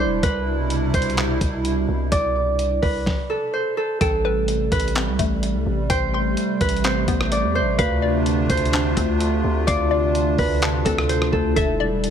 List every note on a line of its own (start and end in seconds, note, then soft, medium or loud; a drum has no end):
0.00 0.19 G3 medium
0.00 3.02 D4 medium
0.00 0.19 E4 medium
0.00 0.29 C5 medium
0.00 1.61 D5 medium
0.05 0.22 E1 loud
0.23 0.91 C2 loud
0.23 3.04 B2 medium
0.23 3.04 C3 medium
0.23 3.04 G3 medium
0.23 3.04 E4 medium
0.23 1.00 B4 loud
0.23 kick loud
0.23 closed hi-hat medium
0.70 closed hi-hat medium
0.94 1.39 C2 loud
0.94 2.88 C5 medium
0.94 kick medium
0.94 closed hi-hat medium
1.02 closed hi-hat medium
1.10 closed hi-hat soft
1.17 clap loud
1.17 closed hi-hat medium
1.41 1.86 C2 loud
1.41 kick medium
1.41 closed hi-hat medium
1.65 closed hi-hat medium
1.88 2.11 C2 loud
2.12 2.80 C2 loud
2.12 3.96 D5 loud
2.12 kick loud
2.12 closed hi-hat medium
2.59 closed hi-hat medium
2.82 3.05 C2 loud
2.82 3.59 B4 medium
2.82 kick medium
2.82 open hi-hat medium
3.06 kick loud
3.06 snare medium
3.30 3.77 A4 medium
3.53 4.78 C5 medium
3.77 4.00 A4 medium
4.01 4.69 A1 loud
4.01 11.53 C3 medium
4.01 7.75 G3 medium
4.01 11.53 A3 medium
4.01 6.20 A4 loud
4.01 5.43 G5 loud
4.01 kick loud
4.01 closed hi-hat medium
4.25 5.66 B4 medium
4.48 closed hi-hat medium
4.72 5.09 A1 loud
4.72 5.96 B4 medium
4.72 kick medium
4.72 closed hi-hat medium
4.80 closed hi-hat medium
4.88 closed hi-hat soft
4.95 6.37 C4 medium
4.95 clap loud
4.95 closed hi-hat medium
5.07 5.19 C2 medium
5.19 5.56 A1 loud
5.19 6.61 A3 medium
5.19 kick medium
5.19 closed hi-hat medium
5.43 closed hi-hat medium
5.54 5.66 C2 loud
5.66 5.89 A1 loud
5.90 6.35 A1 loud
5.90 6.67 C5 loud
5.90 7.32 G5 loud
5.90 kick loud
5.90 closed hi-hat medium
6.14 7.56 C6 medium
6.37 closed hi-hat medium
6.61 7.06 A1 loud
6.61 6.90 B4 medium
6.61 kick medium
6.61 closed hi-hat medium
6.69 closed hi-hat medium
6.77 closed hi-hat soft
6.84 7.79 C4 medium
6.84 7.55 C5 medium
6.84 clap loud
6.84 closed hi-hat medium
7.08 7.45 A1 loud
7.08 7.79 B3 medium
7.08 kick medium
7.08 closed hi-hat medium
7.21 cross-stick loud
7.32 9.17 D5 medium
7.32 closed hi-hat medium
7.43 7.63 E2 loud
7.55 7.84 C5 medium
7.61 7.78 A1 loud
7.78 8.47 D2 loud
7.78 11.53 D3 medium
7.78 9.66 D4 medium
7.78 11.53 F4 medium
7.78 8.56 B4 loud
7.78 9.20 F5 loud
7.78 kick loud
7.78 closed hi-hat medium
8.02 9.44 D5 medium
8.26 closed hi-hat medium
8.50 8.95 D2 loud
8.50 10.45 C5 medium
8.50 kick medium
8.50 closed hi-hat medium
8.57 closed hi-hat medium
8.65 closed hi-hat soft
8.73 10.15 D4 loud
8.73 clap loud
8.73 closed hi-hat medium
8.97 9.42 D2 loud
8.97 10.38 C4 medium
8.97 kick medium
8.97 closed hi-hat medium
9.20 closed hi-hat medium
9.44 9.67 D2 loud
9.67 10.36 D2 loud
9.67 11.55 D4 medium
9.67 11.52 D5 loud
9.67 11.09 F5 loud
9.67 kick loud
9.67 closed hi-hat medium
9.91 11.33 D5 medium
10.15 closed hi-hat medium
10.38 10.84 D2 loud
10.38 11.15 B4 medium
10.38 kick medium
10.38 open hi-hat medium
10.62 11.57 D4 medium
10.62 clap loud
10.62 closed hi-hat medium
10.85 11.31 D2 loud
10.85 11.57 C4 medium
10.85 11.32 A4 medium
10.85 kick medium
10.85 closed hi-hat medium
10.98 cross-stick loud
11.09 12.10 C5 medium
11.09 closed hi-hat medium
11.22 cross-stick loud
11.32 11.56 D2 loud
11.32 11.56 A4 medium
11.32 kick medium
11.56 12.10 E1 loud
11.56 12.10 G3 medium
11.56 12.10 D4 medium
11.56 12.10 E4 medium
11.56 12.10 A4 loud
11.56 12.10 E5 loud
11.56 kick loud
11.56 closed hi-hat medium
11.80 12.10 D5 medium
12.04 closed hi-hat medium